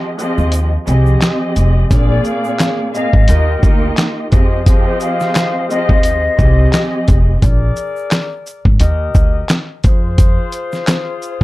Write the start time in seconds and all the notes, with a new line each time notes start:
Already playing: F3 C4 G4 G#4 D#5
0.19 F3 C4 G4 G#4 D#5, shaker
0.38 D#2, shaker
0.52 closed hi-hat, shaker
0.86 C2 F3 C4 G4 G#4 D#5, shaker
1.06 shaker
1.21 snare, clap, closed hi-hat, shaker
1.56 F1, closed hi-hat, shaker
1.89 A#1 A#2 A#3 C4 D4 F4 G#4 D5, kick, closed hi-hat, shaker
2.11 D5
2.24 F5, shaker
2.44 shaker
2.59 snare, clap, closed hi-hat, shaker
2.93 A#2 A#3 C4 G#4 D#5 F5, shaker
3.13 G#1, kick
3.28 D#2 D#3 A#3 D#4 F4 G4 A#4 D#5, closed hi-hat, shaker
3.61 D2 A#3 D#4 F4 G4 D#5, kick, shaker
3.97 snare, clap, closed hi-hat, shaker
4.31 F2 F3 C4 F4 G4 G#4 C5 D#5, kick, closed hi-hat, shaker
4.66 F3 C4 G4 G#4 D#5, kick, closed hi-hat, shaker
4.85 C5
5.00 F5, shaker
5.20 snare, shaker
5.35 snare, clap, closed hi-hat, shaker
5.70 F3 C4 G4 G#4 D#5, shaker
5.89 D#2, kick
6.03 closed hi-hat, shaker
6.37 C2 F3 C4 G4 G#4 D#5, kick, shaker
6.73 snare, clap, closed hi-hat, shaker
7.08 F1, kick, closed hi-hat, shaker
7.42 A#1 G#4 A#4 D5, kick, closed hi-hat, shaker
7.76 shaker
7.96 shaker
8.11 snare, clap, closed hi-hat, shaker
8.47 shaker
8.65 G#1, kick
8.80 D#2 G4 A#4 D#5, closed hi-hat, shaker
9.15 D2, kick, shaker
9.49 snare, clap, closed hi-hat, shaker
9.84 F2 F4 G#4 C5, kick, closed hi-hat, shaker
10.18 kick, closed hi-hat, shaker
10.52 closed hi-hat, shaker
10.72 snare, shaker
10.87 snare, clap, closed hi-hat, shaker
11.22 shaker